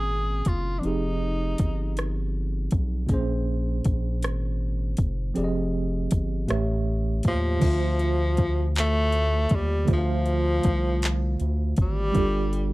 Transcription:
Already playing: G#1 A#2 A#3 C4 C#4 G#4
0.45 F#1 F4, kick, closed hi-hat
0.79 F3 C4 D4
0.83 F1 D#4 G4 G#4, closed hi-hat
1.58 G1, kick, closed hi-hat
1.97 cross-stick, closed hi-hat
2.71 B1, kick, closed hi-hat
3.07 A#1 A#2 A#3 C#4, kick, closed hi-hat
3.12 G#4 C5
3.84 A#1, kick, closed hi-hat
4.23 G#1, cross-stick, closed hi-hat
4.97 F#1, kick, closed hi-hat
5.34 F1 F3 C4 G4 G#4 D5, closed hi-hat
5.44 D#5
6.11 G1, kick, closed hi-hat
6.47 A1 A2 A3 G4 C#5 E5, cross-stick, closed hi-hat
7.23 D#2, kick, closed hi-hat
7.27 F3
7.59 D2 D3 A3 F4, kick, closed hi-hat, crash
7.64 C5 E5
7.99 closed hi-hat
8.37 kick, closed hi-hat
8.76 clap, closed hi-hat
8.80 A3
9.12 closed hi-hat
9.49 D#2, kick, closed hi-hat
9.55 G3
9.85 D3 A3 F4, kick, closed hi-hat
9.89 D2 F3 C5 E5
9.98 F5
10.26 closed hi-hat
10.63 C2, kick, closed hi-hat
11.02 clap, closed hi-hat
11.40 D2, closed hi-hat
11.76 G#1, kick, closed hi-hat
11.81 G3
12.12 G1 G3 D4 F4, kick, closed hi-hat
12.17 G4 A4
12.53 closed hi-hat

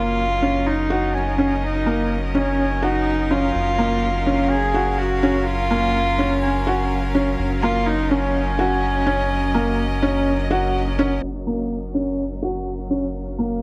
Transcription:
Already playing: F#1 F#3 A#3 C#4 F4 A#4 F5
0.23 D#5
0.42 C#4
0.66 D#4
0.90 F#4
1.15 C#4
1.38 C#4
1.63 D#4
1.86 A#3
2.35 C#4
2.82 D#4 F#4
3.31 C#4 F4
3.55 F#1
3.78 A#3
4.09 F5
4.26 C#4
4.50 G#4
4.74 F#4
4.98 F#4
5.23 C#4
5.46 F4
5.71 A#3
6.19 C#4
6.42 C#4
6.67 F#4
7.15 C#4
7.39 F#1
7.63 A#3 F4
7.82 D#5
7.86 D#4
8.10 C#4
8.59 F#4
9.06 C#4
9.54 A#3
10.02 C#4
10.51 F#4
10.99 C#4
11.23 F#1
11.47 A#3
11.94 C#4
12.42 F#4
12.90 C#4
12.95 F5
13.38 A#3

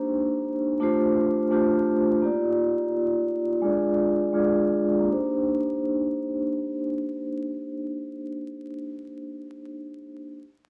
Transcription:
Already playing: A#3 D4 D#4 G4 C5
0.80 A3 D4 F4 G4 C5
1.51 A3 D4 F4 G4 C5
2.22 A#3 D#4 F4 G4 D5
3.62 G#3 D4 F4 G#4 D5
4.33 G#3 D4 F4 G#4 D5
5.00 A#3 D4
5.06 D#4 G4
5.12 C5

